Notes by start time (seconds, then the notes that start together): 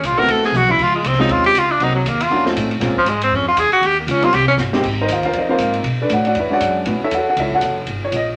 0.01 C#2, hi-hat pedal, ride
0.06 F4
0.10 A#1
0.18 F#1 A3 B3 C4 E4 F#4 A#4
0.27 D2, ride
0.31 A4
0.43 G#4, snare
0.52 B1, hi-hat pedal, mid tom
0.57 F#4
0.69 E4, mid tom
0.78 C#2, kick, crash
0.83 F4
0.96 G#3
1.03 C2, hi-hat pedal, ride
1.07 C4
1.13 snare
1.19 G#3 C4 C#4 D#4 F4, snare
1.29 D#2 F4, ride
1.44 G4, ride
1.54 C#2, hi-hat pedal, ride
1.59 F4
1.72 D4
1.80 C2 F#3 A#3 C4 D#4 F#4, ride
1.96 F#3
2.04 D#2 A#3, hi-hat pedal, ride
2.20 F4, ride
2.30 F2 A#3 C#4 D4 E4 F#4
2.45 A3 C4 C#4 D#4 F4, snare
2.56 A2, hi-hat pedal, ride
2.71 ride
2.80 A#2 G#3 A#3 C4 C#4 F4, snare, ride
2.96 F3, muted upright bass stroke, kick
3.05 G#2, hi-hat pedal, ride
3.09 G#3
3.21 C4, ride
3.31 F2
3.36 C#4
3.49 F4
3.56 E2 G#4, hi-hat pedal, ride
3.71 F#4, muted upright bass stroke, ride
3.81 D#2, ride
3.86 G4
4.00 A#3
4.07 C#2 C#4, hi-hat pedal, ride
4.22 G3 A#3 C4 C#4 F4, ride
4.33 C2 G4, snare, ride
4.48 C#4, kick
4.58 G1, snare, hi-hat pedal
4.73 G#3 A#3 C4 D#4 G4, snare
4.83 G#1, kick, crash
5.01 D#4 A#4 C5 D#5
5.08 D#2, hi-hat pedal, ride
5.12 F4 A#4 C5 F5
5.23 F4 A#4 C5 F5, kick, ride
5.33 F2 D5, ride
5.38 D#4 A#4 C5 D#5
5.49 A#3 C4 D#4 F4 A#4 C5 F5
5.58 G#2, hi-hat pedal, ride
5.74 ride
5.83 B2, ride
6.02 D4 A4 B4 D5
6.09 A2, hi-hat pedal, ride
6.13 F#4 C#5 D5 F#5
6.25 F#4 C#5 D5 F#5, ride
6.35 E2, ride
6.39 E4 B4 C#5 E5
6.49 G#3 C#4 D4 F#4 C#5 D5 F#5
6.53 F#4
6.60 F#2, hi-hat pedal, ride
6.85 A2 B3 C#4 E4 F#4, ride
7.01 E4 A4 C#5 E5, muted upright bass stroke
7.11 E2 F#5, hi-hat pedal, ride
7.16 F#4 A4 C#5
7.29 F#4 A4 C#5 F#5
7.36 C#2 E5, ride
7.41 E4 A4 C#5
7.51 A4 F#5, kick
7.55 F#4 C#5
7.61 F#1, hi-hat pedal, ride
7.87 G1, ride
8.05 C#5
8.12 A#1, hi-hat pedal, ride
8.16 D#5